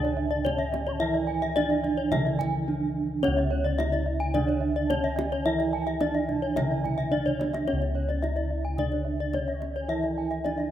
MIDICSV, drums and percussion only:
0, 0, Header, 1, 2, 480
1, 0, Start_track
1, 0, Tempo, 555556
1, 869, Time_signature, 4, 2, 24, 8
1, 9255, End_track
2, 0, Start_track
2, 0, Title_t, "Kendang"
2, 40, Note_on_c, 9, 62, 20
2, 126, Note_off_c, 9, 62, 0
2, 399, Note_on_c, 9, 63, 46
2, 399, Note_on_c, 9, 64, 48
2, 486, Note_off_c, 9, 63, 0
2, 486, Note_off_c, 9, 64, 0
2, 637, Note_on_c, 9, 63, 46
2, 724, Note_off_c, 9, 63, 0
2, 758, Note_on_c, 9, 62, 15
2, 845, Note_off_c, 9, 62, 0
2, 993, Note_on_c, 9, 62, 16
2, 1079, Note_off_c, 9, 62, 0
2, 1230, Note_on_c, 9, 62, 18
2, 1317, Note_off_c, 9, 62, 0
2, 1353, Note_on_c, 9, 63, 40
2, 1440, Note_off_c, 9, 63, 0
2, 1472, Note_on_c, 9, 62, 16
2, 1558, Note_off_c, 9, 62, 0
2, 1592, Note_on_c, 9, 64, 46
2, 1679, Note_off_c, 9, 64, 0
2, 1834, Note_on_c, 9, 63, 48
2, 1834, Note_on_c, 9, 64, 66
2, 1920, Note_off_c, 9, 63, 0
2, 1920, Note_off_c, 9, 64, 0
2, 1959, Note_on_c, 9, 62, 17
2, 2045, Note_off_c, 9, 62, 0
2, 2080, Note_on_c, 9, 64, 70
2, 2166, Note_off_c, 9, 64, 0
2, 2801, Note_on_c, 9, 63, 45
2, 2888, Note_off_c, 9, 63, 0
2, 2922, Note_on_c, 9, 62, 20
2, 3008, Note_off_c, 9, 62, 0
2, 3164, Note_on_c, 9, 62, 21
2, 3251, Note_off_c, 9, 62, 0
2, 3282, Note_on_c, 9, 63, 50
2, 3369, Note_off_c, 9, 63, 0
2, 3399, Note_on_c, 9, 62, 21
2, 3485, Note_off_c, 9, 62, 0
2, 3755, Note_on_c, 9, 64, 66
2, 3841, Note_off_c, 9, 64, 0
2, 3877, Note_on_c, 9, 62, 18
2, 3963, Note_off_c, 9, 62, 0
2, 4237, Note_on_c, 9, 63, 52
2, 4237, Note_on_c, 9, 64, 50
2, 4324, Note_off_c, 9, 63, 0
2, 4324, Note_off_c, 9, 64, 0
2, 4481, Note_on_c, 9, 63, 43
2, 4568, Note_off_c, 9, 63, 0
2, 4600, Note_on_c, 9, 62, 20
2, 4686, Note_off_c, 9, 62, 0
2, 4838, Note_on_c, 9, 62, 19
2, 4924, Note_off_c, 9, 62, 0
2, 5074, Note_on_c, 9, 62, 20
2, 5160, Note_off_c, 9, 62, 0
2, 5188, Note_on_c, 9, 63, 42
2, 5275, Note_off_c, 9, 63, 0
2, 5308, Note_on_c, 9, 62, 15
2, 5394, Note_off_c, 9, 62, 0
2, 5434, Note_on_c, 9, 64, 42
2, 5521, Note_off_c, 9, 64, 0
2, 5676, Note_on_c, 9, 63, 51
2, 5676, Note_on_c, 9, 64, 64
2, 5763, Note_off_c, 9, 63, 0
2, 5763, Note_off_c, 9, 64, 0
2, 5923, Note_on_c, 9, 64, 52
2, 6009, Note_off_c, 9, 64, 0
2, 6049, Note_on_c, 9, 64, 37
2, 6136, Note_off_c, 9, 64, 0
2, 6165, Note_on_c, 9, 64, 37
2, 6251, Note_off_c, 9, 64, 0
2, 6284, Note_on_c, 9, 64, 44
2, 6370, Note_off_c, 9, 64, 0
2, 6401, Note_on_c, 9, 63, 48
2, 6487, Note_off_c, 9, 63, 0
2, 6517, Note_on_c, 9, 63, 46
2, 6604, Note_off_c, 9, 63, 0
2, 6632, Note_on_c, 9, 63, 32
2, 6718, Note_off_c, 9, 63, 0
2, 6755, Note_on_c, 9, 62, 15
2, 6841, Note_off_c, 9, 62, 0
2, 6997, Note_on_c, 9, 62, 15
2, 7083, Note_off_c, 9, 62, 0
2, 7116, Note_on_c, 9, 63, 33
2, 7203, Note_off_c, 9, 63, 0
2, 7229, Note_on_c, 9, 62, 12
2, 7315, Note_off_c, 9, 62, 0
2, 7589, Note_on_c, 9, 64, 53
2, 7675, Note_off_c, 9, 64, 0
2, 7705, Note_on_c, 9, 62, 14
2, 7792, Note_off_c, 9, 62, 0
2, 8065, Note_on_c, 9, 63, 36
2, 8065, Note_on_c, 9, 64, 35
2, 8151, Note_off_c, 9, 63, 0
2, 8151, Note_off_c, 9, 64, 0
2, 8310, Note_on_c, 9, 63, 28
2, 8397, Note_off_c, 9, 63, 0
2, 8434, Note_on_c, 9, 62, 12
2, 8520, Note_off_c, 9, 62, 0
2, 8667, Note_on_c, 9, 62, 14
2, 8753, Note_off_c, 9, 62, 0
2, 8914, Note_on_c, 9, 62, 13
2, 9000, Note_off_c, 9, 62, 0
2, 9035, Note_on_c, 9, 63, 27
2, 9121, Note_off_c, 9, 63, 0
2, 9157, Note_on_c, 9, 62, 13
2, 9244, Note_off_c, 9, 62, 0
2, 9255, End_track
0, 0, End_of_file